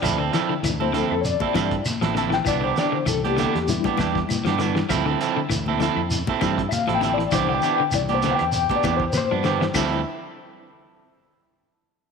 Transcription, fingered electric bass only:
X:1
M:4/4
L:1/16
Q:"Swing 16ths" 1/4=99
K:Ddor
V:1 name="Fingered electric bass" clef=bass
D,,2 z2 D,,3 F,,2 z G,,2 z A,,,3 | C,,2 z2 C,,3 E,,2 z E,,2 z G,,3 | D,,2 z2 D,,3 F,,2 z G,,2 z A,,,3 | C,,2 z2 C,,3 E,,2 z E,,2 z G,,3 |
D,,2 z12 z2 |]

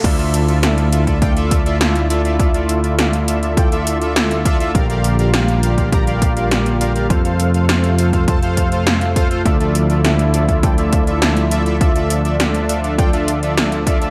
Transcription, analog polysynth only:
X:1
M:4/4
L:1/16
Q:1/4=102
K:Dm
V:1 name="Analog polysynth"
[FAde] [FAde]2 [FAde] [FAde]2 [FAde] [FAde] [FAdg] [FAde]2 [FAde] [FAde]2 [FAde] [FAde] | [FAde] [FAde]2 [FAde] [FAde]2 [FAde] [FAde] [FAdg] [FAde]2 [FAde] [FAde]2 [FAde] [FAde] | [GBdf] [GBdf]2 [GBdf] [GBdf]2 [GBdf] [GBdf] [GBdb] [GBdf]2 [GBdf] [GBdf]2 [GBdf] [GBdf] | [FAcf] [FAcf]2 [FAcf] [FAcf]2 [FAcf] [FAcf] [FAca] [FAcf]2 [FAcf] [FAcf]2 [FAcf] [FAcf] |
[FAde] [FAde]2 [FAde] [FAde]2 [FAde] [FAde] [FAdg] [FAde]2 [FAde] [FAde]2 [FAde] [FAde] | [FAde] [FAde]2 [FAde] [FAde]2 [FAde] [FAde] [FAdg] [FAde]2 [FAde] [FAde]2 [FAde] [FAde] |]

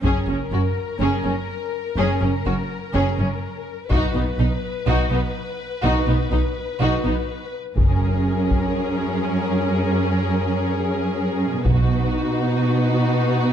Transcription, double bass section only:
X:1
M:4/4
L:1/8
Q:1/4=124
K:F#
V:1 name="Double bass section" clef=bass
F,,, F,,, F,,, z F,,, F,,, z2 | F,,, F,,, F,,, z F,,, F,,, z2 | B,,, B,,, B,,, z B,,, B,,, z2 | B,,, B,,, B,,, z B,,, B,,, z2 |
F,,,2 z6 | z8 | B,,,2 z6 |]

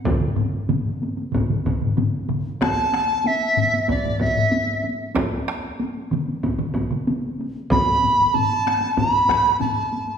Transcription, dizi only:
X:1
M:4/4
L:1/8
Q:1/4=94
K:none
V:1 name="Dizi"
z8 | a2 e2 d e2 z | z8 | b2 a2 b2 a2 |]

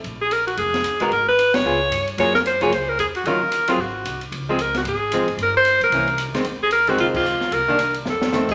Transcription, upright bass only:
X:1
M:4/4
L:1/8
Q:"Swing" 1/4=225
K:Bbm
V:1 name="Upright bass" clef=bass
B,,,4 F,,,2 E,,2 | A,,,4 D,,2 =G,,2 | G,,4 D,,2 =E,,2 | E,,4 A,,,2 C,,2 |
D,,4 A,,,3 A,,, | =G,,,3 B,,, C,,3 z | F,,4 C,,3 z | C,,4 F,,4 |]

